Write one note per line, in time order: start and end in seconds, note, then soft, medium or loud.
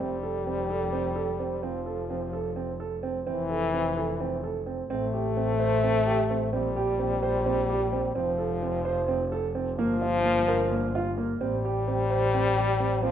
0.00 1.64 F1 medium
0.00 1.65 G3 medium
0.00 0.14 C4 medium
0.23 0.37 A4 medium
0.47 0.61 C4 medium
0.70 0.84 A4 medium
0.92 1.07 C4 medium
1.16 1.30 A4 medium
1.40 1.54 C4 medium
1.63 3.27 F1 medium
1.63 3.00 F3 medium
1.63 1.77 C4 medium
1.86 2.00 A4 medium
2.10 2.24 C4 medium
2.33 2.47 A4 medium
2.56 2.70 C4 medium
2.80 2.94 A4 medium
3.03 3.17 C4 medium
3.26 4.87 F1 medium
3.26 4.62 E3 loud
3.26 3.41 C4 medium
3.50 3.64 A4 medium
3.73 3.87 C4 medium
3.97 4.11 A4 medium
4.20 4.34 C4 medium
4.44 4.57 A4 medium
4.66 4.80 C4 medium
4.89 6.54 A1 medium
4.89 6.49 A3 loud
4.89 5.04 C4 medium
5.14 5.27 G4 medium
5.37 5.51 C4 medium
5.60 5.74 C5 medium
5.83 5.97 C4 medium
6.06 6.20 G4 medium
6.30 6.44 C4 medium
6.53 8.17 A#1 medium
6.53 8.12 G3 loud
6.53 6.67 C4 medium
6.76 6.90 G4 medium
6.99 7.13 C4 medium
7.23 7.36 C5 medium
7.46 7.60 C4 medium
7.70 7.83 G4 medium
7.93 8.06 C4 medium
8.15 9.79 F1 medium
8.15 9.47 F3 medium
8.15 8.29 C4 medium
8.38 8.52 A4 medium
8.62 8.76 C4 medium
8.85 8.99 C5 medium
9.08 9.22 C4 medium
9.32 9.46 A4 medium
9.55 9.69 C4 medium
9.78 11.42 G1 medium
9.78 11.14 F3 loud
9.78 9.92 A#3 medium
10.02 10.15 F4 medium
10.25 10.39 A#3 medium
10.48 10.62 A#4 medium
10.71 10.85 A#3 medium
10.95 11.09 F4 medium
11.18 11.31 A#3 medium
11.40 13.05 A1 medium
11.40 13.05 G3 loud
11.40 11.55 C4 medium
11.65 11.78 G4 medium
11.88 12.01 C4 medium
12.10 12.24 C5 medium
12.34 12.48 C4 medium
12.57 12.71 G4 medium
12.80 12.94 C4 medium
13.03 13.12 A#1 medium
13.03 13.12 F3 loud
13.03 13.12 C4 medium